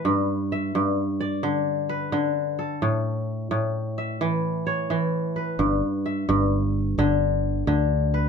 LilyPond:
<<
  \new Staff \with { instrumentName = "Kora" } { \time 12/8 \key g \lydian \tempo 4. = 87 b'8 r8 e''4. d''4. b'4. a'8~ | a'8 r2 e''4. cis''4. b'8~ | b'8 r8 e''4. r2. b'8 | }
  \new Staff \with { instrumentName = "Kora" } { \clef bass \time 12/8 \key g \lydian g,4 r8 g,4 r8 d4 r8 d4 r8 | a,4 r8 a,4 r8 e4 r8 e4 r8 | g,4 r8 g,4 r8 d4 r8 d4 r8 | }
  \new Staff \with { instrumentName = "Fingered electric bass" } { \clef bass \time 12/8 \key g \lydian r1. | r1. | g,,8 r4 g,,4. g,,4. d,4. | }
>>